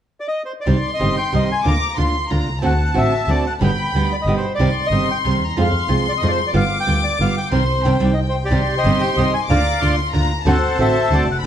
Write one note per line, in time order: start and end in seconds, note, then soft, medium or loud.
0.20 0.27 D5 medium
0.28 0.42 D#5 medium
0.45 0.52 C5 medium
0.61 0.91 D5 medium
0.66 0.81 C2 medium
0.66 0.76 C3 medium
0.66 0.76 D#3 medium
0.66 0.76 G3 medium
0.66 0.77 C4 medium
0.66 0.76 G4 medium
0.66 1.61 C6 medium
0.94 1.16 D#5 medium
0.99 1.14 G1 soft
0.99 1.17 C3 medium
0.99 1.17 D#3 soft
0.99 1.17 G3 medium
0.99 1.17 C4 soft
0.99 1.17 G4 medium
1.18 1.34 G5 medium
1.33 1.47 C2 soft
1.33 1.50 C3 soft
1.33 1.50 D#3 soft
1.33 1.50 G3 soft
1.33 1.50 C4 soft
1.33 1.50 G4 medium
1.33 1.49 D#5 medium
1.52 1.66 G#5 medium
1.64 1.79 D2 medium
1.64 1.74 D3 medium
1.64 1.74 A#3 medium
1.64 1.75 D4 medium
1.64 1.75 F4 medium
1.64 1.97 A#5 medium
1.64 1.95 D6 medium
1.97 2.12 D2 medium
1.97 2.14 D3 soft
1.97 2.15 A#3 medium
1.97 2.15 D4 medium
1.97 2.15 F4 medium
1.97 2.31 C6 medium
2.29 2.44 D2 soft
2.29 2.47 D3 soft
2.29 2.48 A#3 medium
2.29 2.47 D4 medium
2.29 2.47 F4 medium
2.29 2.62 A#5 medium
2.46 2.63 C2 soft
2.62 2.77 D2 medium
2.62 2.71 D3 medium
2.62 2.72 A3 medium
2.62 2.71 C4 medium
2.62 2.72 F#4 medium
2.62 2.94 F#5 medium
2.62 3.56 A5 medium
2.94 3.09 A1 medium
2.94 3.12 D3 soft
2.94 3.12 A3 medium
2.94 3.12 C4 medium
2.94 3.12 F#4 medium
2.94 3.30 E5 medium
3.27 3.41 D2 soft
3.27 3.45 D3 medium
3.27 3.45 A3 medium
3.27 3.46 C4 medium
3.27 3.45 F#4 medium
3.27 3.44 D5 medium
3.46 3.53 F#5 medium
3.61 3.75 G1 medium
3.61 3.70 B2 medium
3.61 3.70 D3 medium
3.61 3.70 G3 medium
3.61 3.70 B3 medium
3.61 3.70 G4 medium
3.61 4.13 G5 medium
3.61 4.39 B5 medium
3.93 4.07 D2 soft
3.93 4.11 B2 soft
3.93 4.12 D3 medium
3.93 4.12 G3 medium
3.93 4.11 B3 medium
3.93 4.12 G4 medium
4.13 4.16 D5 medium
4.22 4.40 G1 soft
4.22 4.35 D#5 medium
4.27 4.44 B2 medium
4.27 4.44 D3 medium
4.27 4.44 G3 medium
4.27 4.44 B3 medium
4.27 4.45 G4 medium
4.37 4.53 C5 medium
4.55 4.87 D5 medium
4.59 4.73 C2 medium
4.59 4.68 C3 medium
4.59 4.68 D#3 medium
4.59 4.69 G3 medium
4.59 4.69 C4 medium
4.59 4.69 G4 medium
4.59 5.53 C6 medium
4.86 5.08 D#5 medium
4.91 5.05 G1 soft
4.91 5.09 C3 medium
4.91 5.09 D#3 medium
4.91 5.09 G3 medium
4.91 5.09 C4 medium
4.91 5.09 G4 medium
5.11 5.18 G5 medium
5.24 5.38 C2 soft
5.24 5.41 C3 medium
5.24 5.42 D#3 medium
5.24 5.42 G3 soft
5.24 5.42 C4 medium
5.24 5.42 G4 medium
5.24 5.34 C6 medium
5.40 5.55 D#2 soft
5.44 5.58 A#5 medium
5.56 5.70 F2 medium
5.56 5.66 C3 medium
5.56 5.66 F3 medium
5.56 5.66 G#3 medium
5.56 5.67 C4 medium
5.56 5.66 F4 medium
5.56 6.51 C6 medium
5.61 5.90 F5 medium
5.88 6.03 C2 medium
5.88 6.06 C3 soft
5.88 6.06 F3 medium
5.88 6.06 G#3 medium
5.88 6.06 C4 medium
5.88 6.06 F4 medium
6.09 6.12 D5 medium
6.17 6.28 D#5 medium
6.22 6.36 F2 soft
6.22 6.39 C3 medium
6.22 6.39 F3 medium
6.22 6.39 G#3 medium
6.22 6.39 C4 medium
6.22 6.40 F4 medium
6.27 6.31 D5 soft
6.31 6.39 C5 medium
6.47 6.51 D5 medium
6.54 6.68 G1 medium
6.54 6.63 G3 medium
6.54 6.63 B3 medium
6.54 6.63 F4 medium
6.54 6.78 F5 medium
6.54 7.52 D6 medium
6.80 7.05 G5 medium
6.86 7.01 D2 medium
6.86 7.04 G3 medium
6.86 7.04 B3 medium
6.86 7.04 F4 medium
7.04 7.19 D5 medium
7.20 7.34 G1 soft
7.20 7.37 G3 medium
7.20 7.37 B3 medium
7.20 7.37 F4 medium
7.20 7.36 F5 medium
7.37 7.52 G5 medium
7.51 7.64 C2 medium
7.51 7.62 D#3 medium
7.51 7.62 G3 medium
7.51 7.62 C4 medium
7.51 8.14 C5 medium
7.51 7.82 C6 medium
7.85 7.97 C2 medium
7.85 7.95 D#3 medium
7.85 7.96 G3 medium
7.85 7.96 C4 medium
7.85 8.18 G5 medium
8.00 8.14 C2 medium
8.00 8.11 D#3 medium
8.00 8.11 G3 medium
8.00 8.12 C4 medium
8.04 8.11 D5 medium
8.13 8.20 D#5 medium
8.19 8.49 G5 medium
8.29 8.36 C5 medium
8.44 8.76 G4 soft
8.44 8.75 D5 medium
8.49 8.64 C2 medium
8.49 8.60 C3 medium
8.49 8.60 D#3 medium
8.49 8.60 G3 medium
8.49 8.60 C4 medium
8.49 8.60 G4 medium
8.49 9.44 C6 medium
8.77 9.22 G4 medium
8.77 9.22 C5 medium
8.77 9.02 D#5 medium
8.84 8.98 G1 medium
8.84 9.02 C3 medium
8.84 9.01 D#3 medium
8.84 9.02 G3 medium
8.84 9.02 C4 medium
8.84 9.02 G4 medium
9.01 9.16 G5 medium
9.17 9.30 C2 medium
9.17 9.34 C3 medium
9.17 9.34 D#3 soft
9.17 9.34 G3 medium
9.17 9.34 C4 medium
9.17 9.34 G4 medium
9.17 9.33 D#5 medium
9.34 9.41 G#5 medium
9.48 9.63 D2 medium
9.48 9.58 D3 medium
9.48 9.59 A#3 medium
9.48 9.59 D4 medium
9.48 9.59 F4 medium
9.48 9.95 D5 medium
9.48 9.95 F5 medium
9.48 9.80 A#5 medium
9.48 9.79 D6 medium
9.81 9.96 D2 medium
9.81 9.98 D3 medium
9.81 9.98 A#3 medium
9.81 9.99 D4 medium
9.81 9.99 F4 medium
9.81 10.14 C6 medium
10.13 10.28 D2 medium
10.13 10.30 D3 medium
10.13 10.30 A#3 medium
10.13 10.30 D4 medium
10.13 10.31 F4 medium
10.13 10.43 A#5 medium
10.45 10.60 D2 medium
10.45 10.55 D3 medium
10.45 10.55 A3 medium
10.45 10.55 C4 medium
10.45 10.55 F#4 medium
10.45 10.78 A4 medium
10.45 10.78 C5 medium
10.45 10.77 F#5 medium
10.45 11.39 A5 medium
10.79 10.92 A1 medium
10.79 10.95 D3 medium
10.79 10.96 A3 medium
10.79 10.95 C4 medium
10.79 10.96 F#4 medium
10.79 11.24 A4 medium
10.79 11.24 C5 medium
10.79 11.10 E5 medium
11.10 11.24 D2 medium
11.10 11.28 D3 medium
11.10 11.28 A3 medium
11.10 11.28 C4 medium
11.10 11.28 F#4 medium
11.10 11.28 D5 medium
11.27 11.42 F1 soft
11.31 11.38 F#5 medium
11.42 11.46 G1 medium
11.42 11.46 B5 medium